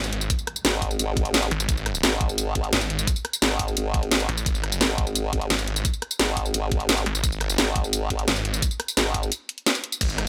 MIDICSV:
0, 0, Header, 1, 6, 480
1, 0, Start_track
1, 0, Tempo, 346821
1, 415, Time_signature, 4, 2, 24, 8
1, 14232, End_track
2, 0, Start_track
2, 0, Title_t, "Analog synth pad"
2, 0, Program_c, 0, 89
2, 13855, Note_on_c, 0, 75, 93
2, 13856, Note_on_c, 0, 59, 81
2, 13856, Note_on_c, 0, 68, 76
2, 14232, Note_off_c, 0, 59, 0
2, 14232, Note_off_c, 0, 68, 0
2, 14232, Note_off_c, 0, 75, 0
2, 14232, End_track
3, 0, Start_track
3, 0, Title_t, "Detuned saw bass"
3, 0, Program_c, 1, 39
3, 0, Note_on_c, 1, 32, 96
3, 156, Note_off_c, 1, 32, 0
3, 175, Note_on_c, 1, 32, 101
3, 396, Note_off_c, 1, 32, 0
3, 2094, Note_on_c, 1, 32, 104
3, 2315, Note_off_c, 1, 32, 0
3, 2334, Note_on_c, 1, 32, 99
3, 2795, Note_off_c, 1, 32, 0
3, 3775, Note_on_c, 1, 32, 97
3, 3995, Note_off_c, 1, 32, 0
3, 4015, Note_on_c, 1, 32, 100
3, 4235, Note_off_c, 1, 32, 0
3, 5935, Note_on_c, 1, 33, 104
3, 6155, Note_off_c, 1, 33, 0
3, 6175, Note_on_c, 1, 32, 98
3, 6636, Note_off_c, 1, 32, 0
3, 7614, Note_on_c, 1, 32, 95
3, 7835, Note_off_c, 1, 32, 0
3, 7855, Note_on_c, 1, 32, 102
3, 8076, Note_off_c, 1, 32, 0
3, 9774, Note_on_c, 1, 32, 102
3, 9995, Note_off_c, 1, 32, 0
3, 10014, Note_on_c, 1, 32, 100
3, 10475, Note_off_c, 1, 32, 0
3, 11455, Note_on_c, 1, 32, 99
3, 11676, Note_off_c, 1, 32, 0
3, 11695, Note_on_c, 1, 32, 102
3, 11916, Note_off_c, 1, 32, 0
3, 13855, Note_on_c, 1, 32, 100
3, 14232, Note_off_c, 1, 32, 0
3, 14232, End_track
4, 0, Start_track
4, 0, Title_t, "Wobble bass"
4, 0, Program_c, 2, 39
4, 894, Note_on_c, 2, 32, 94
4, 1355, Note_off_c, 2, 32, 0
4, 1374, Note_on_c, 2, 32, 104
4, 2075, Note_off_c, 2, 32, 0
4, 2813, Note_on_c, 2, 32, 94
4, 3515, Note_off_c, 2, 32, 0
4, 3534, Note_on_c, 2, 32, 99
4, 3755, Note_off_c, 2, 32, 0
4, 4733, Note_on_c, 2, 32, 91
4, 5195, Note_off_c, 2, 32, 0
4, 5214, Note_on_c, 2, 32, 104
4, 5915, Note_off_c, 2, 32, 0
4, 6655, Note_on_c, 2, 32, 92
4, 7356, Note_off_c, 2, 32, 0
4, 7375, Note_on_c, 2, 32, 100
4, 7596, Note_off_c, 2, 32, 0
4, 8575, Note_on_c, 2, 32, 95
4, 9036, Note_off_c, 2, 32, 0
4, 9055, Note_on_c, 2, 32, 103
4, 9756, Note_off_c, 2, 32, 0
4, 10494, Note_on_c, 2, 32, 95
4, 11195, Note_off_c, 2, 32, 0
4, 11214, Note_on_c, 2, 32, 100
4, 11435, Note_off_c, 2, 32, 0
4, 12415, Note_on_c, 2, 32, 93
4, 12876, Note_off_c, 2, 32, 0
4, 14232, End_track
5, 0, Start_track
5, 0, Title_t, "Impact"
5, 0, Program_c, 3, 103
5, 0, Note_on_c, 3, 60, 75
5, 415, Note_off_c, 3, 60, 0
5, 14232, End_track
6, 0, Start_track
6, 0, Title_t, "Drums"
6, 55, Note_on_c, 9, 42, 38
6, 55, Note_on_c, 9, 54, 27
6, 174, Note_off_c, 9, 42, 0
6, 174, Note_on_c, 9, 42, 69
6, 193, Note_off_c, 9, 54, 0
6, 293, Note_on_c, 9, 54, 58
6, 313, Note_off_c, 9, 42, 0
6, 414, Note_on_c, 9, 36, 124
6, 415, Note_off_c, 9, 54, 0
6, 415, Note_on_c, 9, 42, 96
6, 415, Note_on_c, 9, 54, 46
6, 535, Note_off_c, 9, 54, 0
6, 535, Note_on_c, 9, 54, 28
6, 552, Note_off_c, 9, 36, 0
6, 553, Note_off_c, 9, 42, 0
6, 654, Note_on_c, 9, 37, 49
6, 654, Note_on_c, 9, 42, 65
6, 674, Note_off_c, 9, 54, 0
6, 775, Note_on_c, 9, 54, 58
6, 793, Note_off_c, 9, 37, 0
6, 793, Note_off_c, 9, 42, 0
6, 896, Note_off_c, 9, 54, 0
6, 896, Note_on_c, 9, 38, 120
6, 896, Note_on_c, 9, 42, 96
6, 896, Note_on_c, 9, 54, 48
6, 1015, Note_on_c, 9, 37, 35
6, 1034, Note_off_c, 9, 38, 0
6, 1034, Note_off_c, 9, 42, 0
6, 1034, Note_off_c, 9, 54, 0
6, 1134, Note_on_c, 9, 36, 62
6, 1136, Note_on_c, 9, 46, 74
6, 1154, Note_off_c, 9, 37, 0
6, 1256, Note_on_c, 9, 54, 28
6, 1272, Note_off_c, 9, 36, 0
6, 1274, Note_off_c, 9, 46, 0
6, 1376, Note_off_c, 9, 54, 0
6, 1376, Note_on_c, 9, 42, 93
6, 1376, Note_on_c, 9, 54, 49
6, 1515, Note_off_c, 9, 42, 0
6, 1515, Note_off_c, 9, 54, 0
6, 1614, Note_on_c, 9, 36, 112
6, 1616, Note_on_c, 9, 42, 68
6, 1735, Note_off_c, 9, 42, 0
6, 1735, Note_on_c, 9, 42, 36
6, 1752, Note_off_c, 9, 36, 0
6, 1855, Note_off_c, 9, 42, 0
6, 1855, Note_on_c, 9, 38, 120
6, 1855, Note_on_c, 9, 42, 94
6, 1855, Note_on_c, 9, 54, 48
6, 1975, Note_off_c, 9, 42, 0
6, 1975, Note_off_c, 9, 54, 0
6, 1975, Note_on_c, 9, 42, 37
6, 1975, Note_on_c, 9, 54, 26
6, 1994, Note_off_c, 9, 38, 0
6, 2094, Note_off_c, 9, 42, 0
6, 2094, Note_on_c, 9, 42, 68
6, 2113, Note_off_c, 9, 54, 0
6, 2214, Note_on_c, 9, 54, 59
6, 2233, Note_off_c, 9, 42, 0
6, 2334, Note_on_c, 9, 36, 124
6, 2335, Note_off_c, 9, 54, 0
6, 2335, Note_on_c, 9, 42, 91
6, 2335, Note_on_c, 9, 54, 46
6, 2456, Note_off_c, 9, 54, 0
6, 2456, Note_on_c, 9, 54, 27
6, 2472, Note_off_c, 9, 36, 0
6, 2473, Note_off_c, 9, 42, 0
6, 2575, Note_on_c, 9, 37, 46
6, 2575, Note_on_c, 9, 42, 64
6, 2594, Note_off_c, 9, 54, 0
6, 2695, Note_on_c, 9, 54, 58
6, 2713, Note_off_c, 9, 37, 0
6, 2713, Note_off_c, 9, 42, 0
6, 2815, Note_off_c, 9, 54, 0
6, 2815, Note_on_c, 9, 38, 126
6, 2815, Note_on_c, 9, 42, 92
6, 2815, Note_on_c, 9, 54, 48
6, 2935, Note_on_c, 9, 37, 33
6, 2953, Note_off_c, 9, 38, 0
6, 2953, Note_off_c, 9, 42, 0
6, 2953, Note_off_c, 9, 54, 0
6, 3054, Note_on_c, 9, 36, 108
6, 3055, Note_on_c, 9, 42, 65
6, 3073, Note_off_c, 9, 37, 0
6, 3174, Note_on_c, 9, 54, 28
6, 3192, Note_off_c, 9, 36, 0
6, 3193, Note_off_c, 9, 42, 0
6, 3293, Note_off_c, 9, 54, 0
6, 3293, Note_on_c, 9, 42, 90
6, 3293, Note_on_c, 9, 54, 50
6, 3432, Note_off_c, 9, 42, 0
6, 3432, Note_off_c, 9, 54, 0
6, 3533, Note_on_c, 9, 42, 68
6, 3534, Note_on_c, 9, 36, 69
6, 3653, Note_off_c, 9, 42, 0
6, 3653, Note_on_c, 9, 42, 34
6, 3672, Note_off_c, 9, 36, 0
6, 3774, Note_off_c, 9, 42, 0
6, 3774, Note_on_c, 9, 38, 126
6, 3774, Note_on_c, 9, 42, 89
6, 3774, Note_on_c, 9, 54, 46
6, 3894, Note_off_c, 9, 42, 0
6, 3894, Note_off_c, 9, 54, 0
6, 3894, Note_on_c, 9, 42, 36
6, 3894, Note_on_c, 9, 54, 26
6, 3913, Note_off_c, 9, 38, 0
6, 4015, Note_off_c, 9, 42, 0
6, 4015, Note_on_c, 9, 42, 62
6, 4032, Note_off_c, 9, 54, 0
6, 4135, Note_on_c, 9, 54, 57
6, 4153, Note_off_c, 9, 42, 0
6, 4254, Note_on_c, 9, 36, 122
6, 4255, Note_off_c, 9, 54, 0
6, 4255, Note_on_c, 9, 42, 89
6, 4255, Note_on_c, 9, 54, 48
6, 4374, Note_off_c, 9, 54, 0
6, 4374, Note_on_c, 9, 54, 28
6, 4392, Note_off_c, 9, 36, 0
6, 4393, Note_off_c, 9, 42, 0
6, 4494, Note_on_c, 9, 37, 45
6, 4494, Note_on_c, 9, 42, 62
6, 4513, Note_off_c, 9, 54, 0
6, 4614, Note_on_c, 9, 54, 58
6, 4633, Note_off_c, 9, 37, 0
6, 4633, Note_off_c, 9, 42, 0
6, 4735, Note_off_c, 9, 54, 0
6, 4735, Note_on_c, 9, 38, 122
6, 4735, Note_on_c, 9, 42, 90
6, 4735, Note_on_c, 9, 54, 49
6, 4855, Note_on_c, 9, 37, 32
6, 4874, Note_off_c, 9, 38, 0
6, 4874, Note_off_c, 9, 42, 0
6, 4874, Note_off_c, 9, 54, 0
6, 4974, Note_on_c, 9, 36, 62
6, 4974, Note_on_c, 9, 46, 83
6, 4993, Note_off_c, 9, 37, 0
6, 5095, Note_on_c, 9, 54, 29
6, 5112, Note_off_c, 9, 46, 0
6, 5113, Note_off_c, 9, 36, 0
6, 5214, Note_off_c, 9, 54, 0
6, 5214, Note_on_c, 9, 42, 91
6, 5214, Note_on_c, 9, 54, 50
6, 5353, Note_off_c, 9, 42, 0
6, 5353, Note_off_c, 9, 54, 0
6, 5454, Note_on_c, 9, 36, 112
6, 5455, Note_on_c, 9, 42, 62
6, 5575, Note_off_c, 9, 42, 0
6, 5575, Note_on_c, 9, 42, 35
6, 5593, Note_off_c, 9, 36, 0
6, 5695, Note_off_c, 9, 42, 0
6, 5695, Note_on_c, 9, 38, 123
6, 5695, Note_on_c, 9, 42, 87
6, 5695, Note_on_c, 9, 54, 49
6, 5815, Note_off_c, 9, 42, 0
6, 5815, Note_off_c, 9, 54, 0
6, 5815, Note_on_c, 9, 42, 34
6, 5815, Note_on_c, 9, 54, 26
6, 5833, Note_off_c, 9, 38, 0
6, 5935, Note_off_c, 9, 42, 0
6, 5935, Note_on_c, 9, 42, 63
6, 5953, Note_off_c, 9, 54, 0
6, 6055, Note_on_c, 9, 54, 57
6, 6073, Note_off_c, 9, 42, 0
6, 6174, Note_on_c, 9, 36, 118
6, 6175, Note_off_c, 9, 54, 0
6, 6175, Note_on_c, 9, 42, 88
6, 6175, Note_on_c, 9, 54, 52
6, 6295, Note_off_c, 9, 54, 0
6, 6295, Note_on_c, 9, 54, 29
6, 6313, Note_off_c, 9, 36, 0
6, 6314, Note_off_c, 9, 42, 0
6, 6415, Note_on_c, 9, 37, 45
6, 6415, Note_on_c, 9, 42, 62
6, 6434, Note_off_c, 9, 54, 0
6, 6535, Note_on_c, 9, 54, 60
6, 6554, Note_off_c, 9, 37, 0
6, 6554, Note_off_c, 9, 42, 0
6, 6655, Note_off_c, 9, 54, 0
6, 6655, Note_on_c, 9, 38, 122
6, 6655, Note_on_c, 9, 42, 86
6, 6655, Note_on_c, 9, 54, 48
6, 6775, Note_on_c, 9, 37, 31
6, 6793, Note_off_c, 9, 38, 0
6, 6793, Note_off_c, 9, 42, 0
6, 6793, Note_off_c, 9, 54, 0
6, 6894, Note_on_c, 9, 42, 63
6, 6895, Note_on_c, 9, 36, 106
6, 6913, Note_off_c, 9, 37, 0
6, 7015, Note_on_c, 9, 54, 29
6, 7033, Note_off_c, 9, 36, 0
6, 7033, Note_off_c, 9, 42, 0
6, 7134, Note_off_c, 9, 54, 0
6, 7134, Note_on_c, 9, 42, 89
6, 7134, Note_on_c, 9, 54, 50
6, 7272, Note_off_c, 9, 42, 0
6, 7272, Note_off_c, 9, 54, 0
6, 7374, Note_on_c, 9, 42, 65
6, 7375, Note_on_c, 9, 36, 66
6, 7494, Note_off_c, 9, 42, 0
6, 7494, Note_on_c, 9, 42, 35
6, 7513, Note_off_c, 9, 36, 0
6, 7615, Note_off_c, 9, 42, 0
6, 7615, Note_on_c, 9, 38, 116
6, 7615, Note_on_c, 9, 42, 90
6, 7615, Note_on_c, 9, 54, 50
6, 7735, Note_off_c, 9, 42, 0
6, 7735, Note_off_c, 9, 54, 0
6, 7735, Note_on_c, 9, 42, 34
6, 7735, Note_on_c, 9, 54, 28
6, 7753, Note_off_c, 9, 38, 0
6, 7854, Note_off_c, 9, 42, 0
6, 7854, Note_on_c, 9, 42, 61
6, 7873, Note_off_c, 9, 54, 0
6, 7975, Note_on_c, 9, 54, 60
6, 7993, Note_off_c, 9, 42, 0
6, 8094, Note_off_c, 9, 54, 0
6, 8094, Note_on_c, 9, 36, 117
6, 8094, Note_on_c, 9, 42, 92
6, 8094, Note_on_c, 9, 54, 52
6, 8214, Note_off_c, 9, 54, 0
6, 8214, Note_on_c, 9, 54, 30
6, 8233, Note_off_c, 9, 36, 0
6, 8233, Note_off_c, 9, 42, 0
6, 8333, Note_on_c, 9, 37, 44
6, 8333, Note_on_c, 9, 42, 64
6, 8353, Note_off_c, 9, 54, 0
6, 8453, Note_on_c, 9, 54, 64
6, 8472, Note_off_c, 9, 37, 0
6, 8472, Note_off_c, 9, 42, 0
6, 8573, Note_off_c, 9, 54, 0
6, 8573, Note_on_c, 9, 38, 115
6, 8573, Note_on_c, 9, 42, 90
6, 8573, Note_on_c, 9, 54, 53
6, 8693, Note_on_c, 9, 37, 31
6, 8712, Note_off_c, 9, 38, 0
6, 8712, Note_off_c, 9, 42, 0
6, 8712, Note_off_c, 9, 54, 0
6, 8813, Note_on_c, 9, 46, 83
6, 8814, Note_on_c, 9, 36, 58
6, 8832, Note_off_c, 9, 37, 0
6, 8934, Note_on_c, 9, 54, 29
6, 8951, Note_off_c, 9, 46, 0
6, 8952, Note_off_c, 9, 36, 0
6, 9053, Note_off_c, 9, 54, 0
6, 9053, Note_on_c, 9, 42, 97
6, 9053, Note_on_c, 9, 54, 53
6, 9192, Note_off_c, 9, 42, 0
6, 9192, Note_off_c, 9, 54, 0
6, 9294, Note_on_c, 9, 36, 104
6, 9294, Note_on_c, 9, 42, 67
6, 9414, Note_off_c, 9, 42, 0
6, 9414, Note_on_c, 9, 42, 35
6, 9432, Note_off_c, 9, 36, 0
6, 9534, Note_off_c, 9, 42, 0
6, 9534, Note_on_c, 9, 38, 118
6, 9534, Note_on_c, 9, 42, 91
6, 9534, Note_on_c, 9, 54, 53
6, 9654, Note_off_c, 9, 42, 0
6, 9654, Note_off_c, 9, 54, 0
6, 9654, Note_on_c, 9, 42, 36
6, 9654, Note_on_c, 9, 54, 29
6, 9673, Note_off_c, 9, 38, 0
6, 9774, Note_off_c, 9, 42, 0
6, 9774, Note_on_c, 9, 42, 65
6, 9792, Note_off_c, 9, 54, 0
6, 9894, Note_on_c, 9, 54, 63
6, 9912, Note_off_c, 9, 42, 0
6, 10014, Note_off_c, 9, 54, 0
6, 10014, Note_on_c, 9, 36, 115
6, 10014, Note_on_c, 9, 42, 98
6, 10014, Note_on_c, 9, 54, 53
6, 10134, Note_off_c, 9, 54, 0
6, 10134, Note_on_c, 9, 54, 30
6, 10152, Note_off_c, 9, 36, 0
6, 10153, Note_off_c, 9, 42, 0
6, 10254, Note_on_c, 9, 37, 46
6, 10254, Note_on_c, 9, 42, 66
6, 10273, Note_off_c, 9, 54, 0
6, 10374, Note_on_c, 9, 54, 65
6, 10392, Note_off_c, 9, 37, 0
6, 10392, Note_off_c, 9, 42, 0
6, 10494, Note_off_c, 9, 54, 0
6, 10494, Note_on_c, 9, 38, 113
6, 10494, Note_on_c, 9, 42, 97
6, 10494, Note_on_c, 9, 54, 53
6, 10614, Note_on_c, 9, 37, 33
6, 10632, Note_off_c, 9, 38, 0
6, 10632, Note_off_c, 9, 42, 0
6, 10632, Note_off_c, 9, 54, 0
6, 10734, Note_on_c, 9, 36, 98
6, 10734, Note_on_c, 9, 42, 66
6, 10753, Note_off_c, 9, 37, 0
6, 10854, Note_on_c, 9, 54, 30
6, 10872, Note_off_c, 9, 36, 0
6, 10873, Note_off_c, 9, 42, 0
6, 10974, Note_off_c, 9, 54, 0
6, 10974, Note_on_c, 9, 42, 99
6, 10974, Note_on_c, 9, 54, 53
6, 11113, Note_off_c, 9, 42, 0
6, 11113, Note_off_c, 9, 54, 0
6, 11214, Note_on_c, 9, 36, 59
6, 11215, Note_on_c, 9, 42, 68
6, 11335, Note_off_c, 9, 42, 0
6, 11335, Note_on_c, 9, 42, 37
6, 11353, Note_off_c, 9, 36, 0
6, 11456, Note_off_c, 9, 42, 0
6, 11456, Note_on_c, 9, 38, 116
6, 11456, Note_on_c, 9, 42, 91
6, 11456, Note_on_c, 9, 54, 52
6, 11575, Note_off_c, 9, 42, 0
6, 11575, Note_off_c, 9, 54, 0
6, 11575, Note_on_c, 9, 42, 37
6, 11575, Note_on_c, 9, 54, 29
6, 11594, Note_off_c, 9, 38, 0
6, 11695, Note_off_c, 9, 42, 0
6, 11695, Note_on_c, 9, 42, 69
6, 11713, Note_off_c, 9, 54, 0
6, 11815, Note_on_c, 9, 54, 63
6, 11834, Note_off_c, 9, 42, 0
6, 11934, Note_on_c, 9, 36, 120
6, 11935, Note_off_c, 9, 54, 0
6, 11935, Note_on_c, 9, 42, 97
6, 11935, Note_on_c, 9, 54, 50
6, 12054, Note_off_c, 9, 54, 0
6, 12054, Note_on_c, 9, 54, 29
6, 12073, Note_off_c, 9, 36, 0
6, 12073, Note_off_c, 9, 42, 0
6, 12175, Note_on_c, 9, 37, 48
6, 12175, Note_on_c, 9, 42, 69
6, 12193, Note_off_c, 9, 54, 0
6, 12295, Note_on_c, 9, 54, 62
6, 12313, Note_off_c, 9, 37, 0
6, 12313, Note_off_c, 9, 42, 0
6, 12416, Note_off_c, 9, 54, 0
6, 12416, Note_on_c, 9, 38, 117
6, 12416, Note_on_c, 9, 42, 96
6, 12416, Note_on_c, 9, 54, 52
6, 12536, Note_on_c, 9, 37, 34
6, 12554, Note_off_c, 9, 38, 0
6, 12554, Note_off_c, 9, 42, 0
6, 12554, Note_off_c, 9, 54, 0
6, 12655, Note_on_c, 9, 36, 61
6, 12656, Note_on_c, 9, 46, 77
6, 12674, Note_off_c, 9, 37, 0
6, 12776, Note_on_c, 9, 54, 31
6, 12793, Note_off_c, 9, 36, 0
6, 12794, Note_off_c, 9, 46, 0
6, 12894, Note_off_c, 9, 54, 0
6, 12894, Note_on_c, 9, 42, 98
6, 12894, Note_on_c, 9, 54, 53
6, 13033, Note_off_c, 9, 42, 0
6, 13033, Note_off_c, 9, 54, 0
6, 13135, Note_on_c, 9, 42, 71
6, 13256, Note_off_c, 9, 42, 0
6, 13256, Note_on_c, 9, 42, 37
6, 13376, Note_off_c, 9, 42, 0
6, 13376, Note_on_c, 9, 38, 113
6, 13376, Note_on_c, 9, 42, 97
6, 13376, Note_on_c, 9, 54, 50
6, 13495, Note_off_c, 9, 42, 0
6, 13495, Note_off_c, 9, 54, 0
6, 13495, Note_on_c, 9, 42, 40
6, 13495, Note_on_c, 9, 54, 28
6, 13514, Note_off_c, 9, 38, 0
6, 13614, Note_off_c, 9, 42, 0
6, 13614, Note_on_c, 9, 42, 68
6, 13634, Note_off_c, 9, 54, 0
6, 13735, Note_on_c, 9, 54, 62
6, 13753, Note_off_c, 9, 42, 0
6, 13854, Note_off_c, 9, 54, 0
6, 13854, Note_on_c, 9, 42, 97
6, 13854, Note_on_c, 9, 49, 78
6, 13854, Note_on_c, 9, 54, 49
6, 13855, Note_on_c, 9, 36, 126
6, 13974, Note_off_c, 9, 54, 0
6, 13974, Note_on_c, 9, 54, 28
6, 13993, Note_off_c, 9, 36, 0
6, 13993, Note_off_c, 9, 42, 0
6, 13993, Note_off_c, 9, 49, 0
6, 14093, Note_on_c, 9, 37, 51
6, 14093, Note_on_c, 9, 42, 68
6, 14113, Note_off_c, 9, 54, 0
6, 14232, Note_off_c, 9, 37, 0
6, 14232, Note_off_c, 9, 42, 0
6, 14232, End_track
0, 0, End_of_file